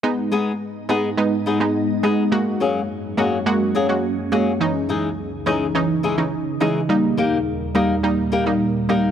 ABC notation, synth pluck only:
X:1
M:4/4
L:1/16
Q:1/4=105
K:G#m
V:1 name="Synth pluck"
[G,B,D]4 z2 [G,B,D] z [G,B,D] z2 [G,B,D]3 [G,B,D]2 | [G,A,F]4 z2 [G,A,F] z [G,A,F]3 [G,A,F] z2 [G,A,F] z | [E,CD]4 z2 [E,CD] z [E,CD] z2 [E,CD]3 [E,CD]2 | [=G,A,D]4 z2 [G,A,D] z [G,A,D]3 [G,A,D] z2 [G,A,D] z |]